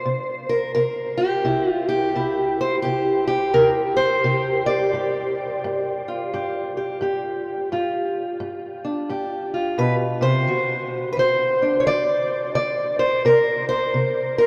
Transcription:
steel-string acoustic guitar
Already playing: C5
0.06 C3
0.49 A#4
0.75 C3 A#4
1.18 G4
1.45 C3 E4
1.71 F4
1.89 G4
2.15 C3 E4
2.61 C5
2.82 C3 G4
3.28 G4
3.53 C3 A#4
3.97 C5
4.24 C3 G4
4.66 D5
4.93 G2 G4
5.64 G2
6.08 F4
6.33 G2 G4
6.77 G4
7.01 G2 G4
7.72 G2 F4
8.40 G2
8.85 D4
9.09 G2 G4
9.54 F4
9.78 B2 B4
10.21 C3 C5
10.48 D3 F#4
11.13 B4
11.17 D3 C5
11.62 D4
11.80 C#5
11.87 D3 D5
12.55 D3 D5
12.99 C5
13.25 C3 A#4
13.69 C5
13.94 C3
14.38 A#4

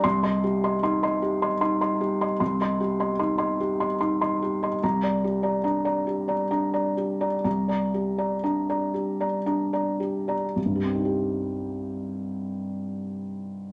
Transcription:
felt piano
0.04 C2 C6
0.23 D#5 C6
0.44 G4
0.64 D#5 C6
0.83 D#4 C6
1.03 D#5 C6
1.22 G4
1.42 D#5 C6
1.61 D#4 C6
1.81 D#5 C6
2.01 G4
2.21 D#5 C6
2.40 C2 C6
2.61 D#5 C6
2.80 G4
3.00 D#5 C6
3.19 D#4 C6
3.38 D#5 C6
3.60 G4
3.80 D#5 C6
4.01 D#4 C6
4.21 D#5 C6
4.42 G4
4.63 D#5 C6
4.83 C2 A#5
5.03 D5 A#5
5.24 G4
5.43 D5 A#5
5.64 D4 A#5
5.85 D5 A#5
6.07 G4
6.28 D5 A#5
6.51 D4 A#5
6.74 D5 A#5
6.97 G4
7.21 D5 A#5
7.44 C2 A#5
7.68 D5 A#5
7.94 G4
8.18 D5 A#5
8.43 D4 A#5
8.69 D5 A#5
8.94 G4
9.20 D5 A#5
9.46 D4 A#5
9.73 D5 A#5
10.00 G4
10.28 D5 A#5
10.56 C2
10.65 G2
10.75 G3
10.85 C4
10.95 D#4
11.05 G4

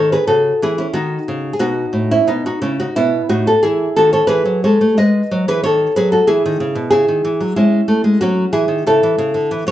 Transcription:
nylon-string guitar
Already playing: D#3
0.12 G#4 B4
0.27 C#3 F#4 A4
0.62 E3 E4 G#4
0.78 C#4 E4
0.93 D#3 D#4 F#4
1.28 C#3
1.53 G#4
1.59 B2 D#4 F#4
1.93 A2
2.11 C#4 E4
2.27 B2 B3 D#4
2.46 D#4 F#4
2.62 C#3 C#4 E4
2.80 D#4 F#4
2.96 B2 B3 E4
3.29 A2 D#4 F#4
3.47 F#4 A4
3.63 E3 E4 G#4
3.96 D#3 F#4 A4
4.13 A4 C#5
4.27 E3 G#4 B4
4.45 F#3
4.64 G#3 A4 C#5
4.81 A3
4.97 G#3 B4 D#5
5.31 F#3
5.48 E3 G#4 B4
5.64 D#3 A4 C#5
5.96 F#3 G#4 B4
6.12 F#4 A4
6.27 E3 E4 G#4
6.46 D#3
6.60 C#3
6.75 B2
6.90 C#3 E4 G#4
7.08 D#3
7.25 E3
7.41 F#3
7.56 G#3 C#4 E4
7.88 A3
8.04 G#3
8.21 F#3 C#4 F#4
8.53 E3 E4 G#4
8.68 D#3
8.87 C#3 E4 A4
9.03 E3
9.18 C#3
9.34 D3
9.51 E3
9.67 F#3 C#5

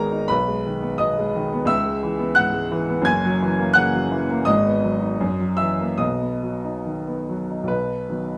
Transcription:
grand piano
Already playing: G#1 G#2 D#3 G#3 B3 D#4 G#4 A#4 G#5 A#5
0.12 D#4
0.28 B1 B4 B5
0.48 G#3
0.66 D#3
0.82 B3
0.98 B2 D#5 D#6
1.19 G#3
1.36 D#3
1.53 B3
1.65 C#2 E5 E6
1.86 G#3
2.03 E3
2.19 B3
2.35 G#2 F#5 F#6
2.54 G#3
2.71 E3
2.89 B3
3.02 F#2 G#6
3.06 F#1 G#5
3.25 F#3
3.42 E3
3.59 A#3
3.74 C#3 F#5 F#6
3.94 F#3
4.12 E3
4.30 A#3
4.45 G#1 G#2 D#5 D#6
4.66 B3
4.84 F#3
5.02 D#4
5.21 F#2
5.40 F#3
5.57 E3 E5 E6
5.80 A#3
5.98 B1 B2 D#5 D#6
6.21 B3
6.43 F#3
6.64 D#4
6.86 D#3
7.07 B3
7.29 F#3
7.50 D#4
7.64 B1
7.68 B2 B4
8.09 D#3 F#3 B3

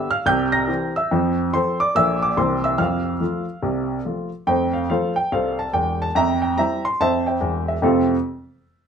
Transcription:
grand piano
Already playing: E6
0.11 F5 F6
0.26 C2 C3 G5 G6
0.52 A#5 A#6
0.68 E3 C4 G4
0.96 E5 E6
1.11 F2 F3
1.53 F3 C4 A4 C5 C6
1.80 D5 D6
1.95 A#1 A#2 F3 A#3 A4 E5 E6
2.22 D5 D6
2.37 C2 C3 E3 A#3 G4 C5 C6
2.64 E5 E6
2.78 F2 F3 F5 F6
3.21 F3 A3 F4
3.62 C2 C3
4.05 F3 A3 F4
4.47 F2 A3 C5 G5
4.73 F5
4.90 F3 A3 F4 A4 C5 F5
5.16 G5
5.32 C2 A4 C5 F5
5.59 A5
5.73 E1 E2 G5
6.02 A5
6.15 F2 E5 G5 A#5
6.42 G5
6.57 G3 C4 E4 E5 G5 A#5
6.85 C6
7.01 F2 C5 E5 A5
7.27 C5 E5 G5
7.41 E1 E2
7.68 E5
7.82 F2 C3 A3 C4 F4 A4 F5

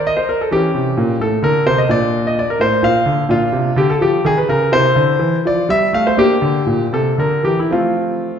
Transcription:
grand piano
Already playing: D#3
0.07 D#5
0.17 C5
0.29 A#4
0.41 A4
0.51 E3 C#4 G4
0.74 C3
0.97 A#2
1.20 A2 A4
1.43 D3 A#4
1.66 C3 C5
1.78 D#5
1.89 A#2 D4 D5
2.27 D#5
2.39 D5
2.50 A#4
2.59 A2 C5
2.83 A#2 F5
3.06 D3
3.29 A#2 D4 F4
3.52 C3
3.76 D3 G4
3.90 A4
4.01 F3 G4
4.25 D#3 G#4
4.38 B4
4.49 C#3 A#4
4.72 C3 E4 C5
4.96 D3
5.19 E3
5.45 F3 D5
5.69 G3 E5
5.93 A3 F5
6.07 C5
6.17 A#3 D4 G4
6.42 D3
6.66 A#2
6.93 C3 A4
7.18 D3 A#4
7.43 E3 G4
7.59 E4
7.71 F3 A3 C4 F4

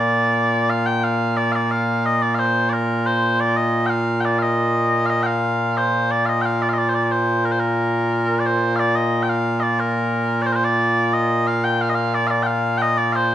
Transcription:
bagpipes
Already playing: A#2 A#3 F4 D5
0.70 F5
0.86 G5
1.04 F5
1.37 D5
1.52 D5 F5
1.71 F5
2.06 D#5
2.22 D5
2.35 F5
2.39 C5
2.69 A#4 D5
3.06 C5
3.40 D5
3.56 D#5
3.86 F5 G5
4.21 G5
4.25 D5
4.39 D#5 F5
5.06 D#5 F5
5.23 F5 G5
5.77 C5
6.11 D5
6.26 D#5 F5
6.42 G5
6.46 F5
6.62 D5
6.69 F5
6.73 D#5
6.78 D5
6.89 C5
6.94 D5
7.03 D5
7.12 C5
7.45 A#4
7.52 C5
7.60 A#4
8.40 D5
8.46 C5
8.76 D5 F5
8.95 D#5
9.23 G5
9.30 F5
9.60 D5 D#5
9.80 A#4
10.42 D5
10.46 C5
10.52 A#4 C5
10.64 D5
11.14 D#5
11.47 F5
11.64 G5
11.81 F5
11.89 D#5
11.95 F5
12.14 D5
12.27 D5 F5
12.43 F5 G5
12.78 D#5 G5
12.98 D5
13.12 C5 F5

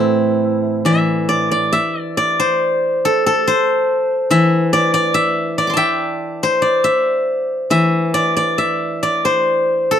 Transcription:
guzheng
Already playing: A2 E3 A3 C4 A4 C5
0.00 E4
0.85 E3 E5
1.29 D5
1.51 D5
1.73 E5
2.00 D5
2.17 D5
2.40 C5
3.05 A4
3.26 A4
3.47 C5
4.30 E3 E5
4.73 D5
4.94 D5
5.14 E5
5.58 D5
5.67 C6 D6
5.73 E5 G5 A5
6.43 C5
6.62 D5
6.84 E5
7.70 E3 E5
8.14 D5
8.37 D5
8.58 E5
9.03 D5
9.25 C5
9.91 A4

